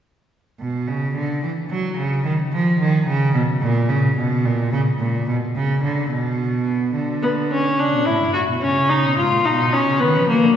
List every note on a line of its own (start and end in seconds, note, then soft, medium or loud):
0.59 0.89 B2 medium
0.87 1.14 C#3 medium
1.14 1.42 D3 medium
1.43 1.51 E3 medium
1.70 1.97 F#3 medium
1.98 2.24 C#3 medium
2.24 2.32 D#3 medium
2.52 2.79 F3 medium
2.79 3.06 D#3 medium
3.07 3.33 C#3 loud
3.34 3.42 B2 medium
3.61 3.90 A#2 loud
3.89 4.16 C#3 medium
4.17 4.46 B2 medium
4.45 4.72 A#2 medium
4.72 4.80 C#3 medium
4.99 5.27 A#2 medium
5.28 5.36 B2 medium
5.55 5.83 C#3 medium
5.84 6.10 D3 medium
6.10 6.93 B2 medium
6.95 7.80 D3 medium
7.23 7.31 B3 medium
7.51 7.81 C#4 medium
7.79 7.93 C#3 medium
7.79 8.07 D4 medium
7.93 8.06 B2 medium
8.06 8.21 A2 medium
8.06 8.33 E4 medium
8.21 8.26 G2 medium
8.33 8.41 A2 medium
8.33 8.41 F#4 medium
8.49 8.62 B2 medium
8.61 9.06 C#3 medium
8.61 8.91 C#4 medium
8.89 9.17 D#4 medium
9.05 9.17 B2 medium
9.18 9.24 G#2 medium
9.18 9.47 F4 medium
9.32 9.45 A#2 medium
9.45 9.86 B2 medium
9.45 9.74 D#4 medium
9.73 10.01 C#4 medium
9.87 10.01 C#3 medium
10.00 10.17 D#3 medium
10.00 10.28 B3 medium
10.15 10.29 F3 medium
10.29 10.35 F#3 medium
10.29 10.56 A#3 medium
10.43 10.48 D3 medium